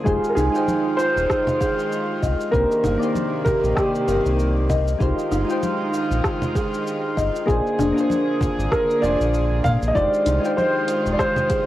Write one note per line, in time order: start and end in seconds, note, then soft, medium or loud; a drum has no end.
0.04 0.19 F1 medium
0.04 2.51 D#3 medium
0.04 0.49 G#3 medium
0.04 2.51 G#3 medium
0.04 0.50 D#4 medium
0.04 2.51 F4 medium
0.04 0.50 F4 medium
0.04 0.50 G4 medium
0.04 0.31 G#4 medium
0.04 0.51 C5 medium
0.04 kick loud
0.04 shaker soft
0.24 shaker soft
0.29 0.36 A#4 medium
0.35 0.50 C2 loud
0.35 0.55 D#4 loud
0.35 1.00 G#4 medium
0.35 shaker medium
0.50 2.48 G#3 medium
0.50 2.49 D#4 medium
0.50 2.50 F4 medium
0.55 2.51 C5 medium
0.55 2.51 G5 medium
0.55 shaker soft
0.68 high conga medium
0.68 shaker soft
0.97 1.27 F4 medium
0.97 2.18 C5 loud
0.97 shaker medium
1.16 1.26 D#1 medium
1.16 shaker soft
1.30 kick loud
1.30 cross-stick medium
1.30 shaker soft
1.47 low conga medium
1.47 shaker soft
1.60 1.89 G#4 medium
1.60 kick loud
1.60 shaker medium
1.79 shaker soft
1.92 shaker soft
2.23 2.36 C2 medium
2.23 2.51 D#5 medium
2.23 kick medium
2.23 shaker medium
2.41 shaker soft
2.51 2.66 C2 loud
2.51 4.98 C3 medium
2.51 4.98 D#3 medium
2.51 2.96 A#3 medium
2.51 4.98 A#3 medium
2.51 2.97 D4 medium
2.51 2.97 D#4 medium
2.51 2.98 G4 medium
2.51 3.43 A#4 loud
2.51 2.98 C5 medium
2.51 kick loud
2.51 shaker soft
2.72 shaker soft
2.84 2.97 G1 medium
2.84 3.03 D#4 loud
2.84 low conga medium
2.84 shaker medium
2.98 4.96 A#3 medium
2.98 4.97 D#4 medium
2.98 4.96 D5 medium
3.03 4.98 G4 medium
3.03 4.99 C5 medium
3.03 shaker soft
3.15 high conga medium
3.15 shaker soft
3.45 3.74 G4 medium
3.45 3.77 A#4 loud
3.45 kick medium
3.45 low conga medium
3.45 shaker medium
3.63 3.73 A#1 medium
3.63 shaker soft
3.75 4.65 G4 medium
3.75 kick loud
3.75 cross-stick medium
3.75 shaker soft
3.95 shaker soft
4.08 4.21 G1 medium
4.08 4.36 A#4 medium
4.08 shaker medium
4.25 4.95 C2 medium
4.25 shaker soft
4.40 shaker soft
4.70 4.98 D#5 medium
4.70 kick medium
4.70 low conga medium
4.70 shaker medium
4.88 shaker soft
4.99 5.14 C2 medium
4.99 7.45 D#3 medium
4.99 5.44 G#3 medium
4.99 7.45 G#3 medium
4.99 5.44 D#4 medium
4.99 7.45 F4 medium
4.99 5.45 F4 medium
4.99 5.45 G4 medium
4.99 5.46 C5 medium
4.99 kick loud
4.99 shaker soft
5.19 shaker soft
5.31 5.44 G1 medium
5.31 5.50 D#4 loud
5.31 shaker medium
5.45 7.43 G#3 medium
5.45 7.44 D#4 medium
5.45 7.44 F4 medium
5.50 7.46 C5 medium
5.50 7.45 G5 medium
5.50 shaker soft
5.63 high conga medium
5.63 shaker soft
5.93 6.22 F4 medium
5.93 shaker medium
6.10 6.21 A#1 medium
6.10 shaker soft
6.24 kick loud
6.24 cross-stick medium
6.24 shaker soft
6.42 low conga medium
6.42 shaker soft
6.55 6.83 G#4 medium
6.55 kick loud
6.55 shaker medium
6.74 shaker soft
6.87 shaker soft
7.17 7.30 G1 medium
7.17 7.45 D#5 medium
7.17 kick medium
7.17 shaker medium
7.36 shaker soft
7.46 7.61 A#1 loud
7.46 9.93 D3 medium
7.46 7.91 A#3 medium
7.46 9.93 A#3 medium
7.46 7.92 D4 medium
7.46 7.92 F4 medium
7.46 8.67 G#4 medium
7.46 9.93 G#4 medium
7.46 7.93 G#4 medium
7.46 7.93 C5 medium
7.46 kick loud
7.46 shaker soft
7.67 shaker soft
7.79 7.92 F1 loud
7.79 7.97 D4 medium
7.79 low conga medium
7.79 shaker medium
7.92 8.98 A#3 medium
7.92 8.99 D4 medium
7.92 9.00 F4 medium
7.98 9.01 G#4 medium
7.98 9.02 C5 medium
7.98 shaker soft
8.10 high conga medium
8.10 shaker soft
8.41 8.69 F4 medium
8.41 kick loud
8.41 low conga medium
8.41 shaker medium
8.58 8.68 G#1 medium
8.58 shaker soft
8.71 9.03 A#4 loud
8.71 kick loud
8.71 cross-stick medium
8.71 shaker soft
8.90 shaker soft
8.99 9.90 A#3 medium
8.99 9.91 D4 medium
8.99 9.92 F4 medium
8.99 9.31 G#4 medium
8.99 9.66 D5 medium
9.03 9.16 F1 medium
9.03 9.93 G#4 medium
9.03 9.94 C5 medium
9.03 shaker medium
9.20 9.51 A#1 medium
9.20 shaker soft
9.34 shaker soft
9.51 9.61 A#1 medium
9.64 9.78 A#2 medium
9.64 9.93 D5 medium
9.64 9.70 F5 loud
9.64 kick medium
9.64 low conga medium
9.64 shaker medium
9.82 9.92 A#1 medium
9.82 shaker soft
9.88 9.95 D#5 medium
9.93 10.09 F1 loud
9.93 11.66 D#3 medium
9.93 10.39 G#3 medium
9.93 11.66 G#3 medium
9.93 10.39 D#4 medium
9.93 10.40 F4 medium
9.93 11.66 F4 medium
9.93 10.40 G4 medium
9.93 10.40 C5 medium
9.93 10.59 D5 loud
9.93 kick loud
9.93 shaker soft
10.14 shaker soft
10.26 10.39 C2 loud
10.26 10.45 D#4 medium
10.26 closed hi-hat medium
10.26 shaker medium
10.40 11.66 G#3 medium
10.40 11.66 D#4 medium
10.40 11.66 F4 medium
10.45 11.66 C5 medium
10.45 11.66 G5 medium
10.45 shaker soft
10.57 11.15 C5 medium
10.57 high conga loud
10.57 shaker soft
10.88 11.16 F4 medium
10.88 closed hi-hat medium
10.88 shaker medium
11.06 11.16 D#1 medium
11.06 shaker soft
11.13 11.19 D5 medium
11.19 11.66 C5 loud
11.19 kick loud
11.19 cross-stick medium
11.19 shaker soft
11.36 low conga medium
11.36 shaker soft
11.50 11.66 G#4 medium
11.50 kick loud
11.50 closed hi-hat medium
11.50 shaker medium